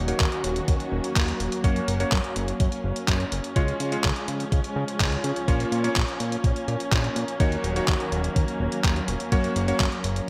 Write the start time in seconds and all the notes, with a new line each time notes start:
Already playing: D#1 D#3 F#3 A#3 C#4 F#4
0.08 A#3 D#4 F#4 C#5, closed hi-hat
0.20 D#2, kick, clap, closed hi-hat
0.32 closed hi-hat
0.44 D#1, closed hi-hat
0.56 closed hi-hat
0.68 D#2, kick, closed hi-hat
0.80 closed hi-hat
0.92 D#1
1.04 closed hi-hat
1.16 D#2, kick, clap, closed hi-hat
1.28 closed hi-hat
1.40 D#1, closed hi-hat
1.52 closed hi-hat
1.64 F#2 A#3 C#4 F#4 C#5, kick, closed hi-hat
1.76 closed hi-hat
1.88 F#1, closed hi-hat
2.00 A#3 C#4 F#4 C#5, closed hi-hat
2.12 F#2, kick, clap, closed hi-hat
2.24 closed hi-hat
2.36 F#1, closed hi-hat
2.48 closed hi-hat
2.60 F#2, kick, closed hi-hat
2.72 closed hi-hat
2.84 F#1
2.96 closed hi-hat
3.08 F#2, kick, clap, closed hi-hat
3.20 closed hi-hat
3.32 F#1, closed hi-hat
3.44 closed hi-hat
3.56 C#2 F3 G#3 C#4 F4 C#5, kick, closed hi-hat
3.68 closed hi-hat
3.80 C#3, closed hi-hat
3.92 G#3 C#4 F4 C#5, closed hi-hat
4.04 C#2, kick, clap, closed hi-hat
4.16 closed hi-hat
4.28 C#3, closed hi-hat
4.40 closed hi-hat
4.52 C#2, kick, closed hi-hat
4.64 closed hi-hat
4.76 C#3
4.88 closed hi-hat
5.00 C#2, kick, clap, closed hi-hat
5.12 closed hi-hat
5.24 C#3, closed hi-hat
5.36 closed hi-hat
5.48 A#1 A#3 C#4 F4 C#5, kick, closed hi-hat
5.60 closed hi-hat
5.72 A#2, closed hi-hat
5.84 A#3 C#4 F4 C#5, closed hi-hat
5.96 A#1, kick, clap, closed hi-hat
6.08 closed hi-hat
6.20 A#2, closed hi-hat
6.32 closed hi-hat
6.44 A#1, kick, closed hi-hat
6.56 closed hi-hat
6.68 A#2, closed hi-hat
6.80 closed hi-hat
6.92 A#1, kick, clap, closed hi-hat
7.04 closed hi-hat
7.16 A#2, closed hi-hat
7.28 closed hi-hat
7.40 D#2 D#3 F#3 A#3 D#4 F#4 C#5, kick, closed hi-hat
7.52 closed hi-hat
7.64 D#1, closed hi-hat
7.76 A#3 D#4 F#4 C#5, closed hi-hat
7.88 D#2, kick, clap, closed hi-hat
8.00 closed hi-hat
8.12 D#1, closed hi-hat
8.24 closed hi-hat
8.36 D#2, kick, closed hi-hat
8.48 closed hi-hat
8.60 D#1
8.72 closed hi-hat
8.84 D#2, kick, clap, closed hi-hat
8.96 closed hi-hat
9.08 D#1, closed hi-hat
9.20 closed hi-hat
9.32 F#2 A#3 C#4 F#4 C#5, kick, closed hi-hat
9.44 closed hi-hat
9.56 F#1, closed hi-hat
9.68 A#3 C#4 F#4 C#5, closed hi-hat
9.80 F#2, kick, clap, closed hi-hat
9.92 closed hi-hat
10.04 F#1, closed hi-hat
10.16 closed hi-hat